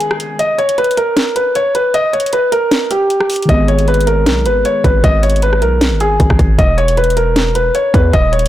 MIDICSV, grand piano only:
0, 0, Header, 1, 2, 480
1, 0, Start_track
1, 0, Key_signature, 5, "minor"
1, 0, Tempo, 387097
1, 487, Time_signature, 4, 2, 24, 8
1, 10518, End_track
2, 0, Start_track
2, 0, Title_t, "Grand piano"
2, 0, Program_c, 0, 0
2, 0, Note_on_c, 0, 68, 90
2, 445, Note_off_c, 0, 68, 0
2, 486, Note_on_c, 0, 75, 91
2, 705, Note_off_c, 0, 75, 0
2, 723, Note_on_c, 0, 73, 87
2, 943, Note_off_c, 0, 73, 0
2, 968, Note_on_c, 0, 71, 88
2, 1186, Note_off_c, 0, 71, 0
2, 1208, Note_on_c, 0, 70, 85
2, 1658, Note_off_c, 0, 70, 0
2, 1684, Note_on_c, 0, 71, 77
2, 1904, Note_off_c, 0, 71, 0
2, 1928, Note_on_c, 0, 73, 82
2, 2146, Note_off_c, 0, 73, 0
2, 2168, Note_on_c, 0, 71, 83
2, 2386, Note_off_c, 0, 71, 0
2, 2407, Note_on_c, 0, 75, 103
2, 2626, Note_off_c, 0, 75, 0
2, 2643, Note_on_c, 0, 73, 74
2, 2863, Note_off_c, 0, 73, 0
2, 2889, Note_on_c, 0, 71, 83
2, 3107, Note_off_c, 0, 71, 0
2, 3125, Note_on_c, 0, 70, 86
2, 3577, Note_off_c, 0, 70, 0
2, 3606, Note_on_c, 0, 67, 82
2, 4283, Note_off_c, 0, 67, 0
2, 4327, Note_on_c, 0, 75, 96
2, 4545, Note_off_c, 0, 75, 0
2, 4567, Note_on_c, 0, 73, 87
2, 4785, Note_off_c, 0, 73, 0
2, 4810, Note_on_c, 0, 71, 87
2, 5027, Note_off_c, 0, 71, 0
2, 5046, Note_on_c, 0, 70, 85
2, 5498, Note_off_c, 0, 70, 0
2, 5529, Note_on_c, 0, 71, 79
2, 5747, Note_off_c, 0, 71, 0
2, 5769, Note_on_c, 0, 73, 83
2, 5987, Note_off_c, 0, 73, 0
2, 6007, Note_on_c, 0, 71, 82
2, 6225, Note_off_c, 0, 71, 0
2, 6247, Note_on_c, 0, 75, 102
2, 6465, Note_off_c, 0, 75, 0
2, 6483, Note_on_c, 0, 73, 76
2, 6703, Note_off_c, 0, 73, 0
2, 6730, Note_on_c, 0, 71, 83
2, 6947, Note_off_c, 0, 71, 0
2, 6968, Note_on_c, 0, 70, 77
2, 7419, Note_off_c, 0, 70, 0
2, 7449, Note_on_c, 0, 68, 86
2, 8125, Note_off_c, 0, 68, 0
2, 8166, Note_on_c, 0, 75, 93
2, 8385, Note_off_c, 0, 75, 0
2, 8402, Note_on_c, 0, 73, 87
2, 8623, Note_off_c, 0, 73, 0
2, 8648, Note_on_c, 0, 71, 87
2, 8866, Note_off_c, 0, 71, 0
2, 8887, Note_on_c, 0, 70, 82
2, 9338, Note_off_c, 0, 70, 0
2, 9363, Note_on_c, 0, 71, 76
2, 9583, Note_off_c, 0, 71, 0
2, 9607, Note_on_c, 0, 73, 79
2, 9825, Note_off_c, 0, 73, 0
2, 9848, Note_on_c, 0, 71, 78
2, 10066, Note_off_c, 0, 71, 0
2, 10087, Note_on_c, 0, 75, 101
2, 10306, Note_off_c, 0, 75, 0
2, 10323, Note_on_c, 0, 73, 74
2, 10518, Note_off_c, 0, 73, 0
2, 10518, End_track
0, 0, End_of_file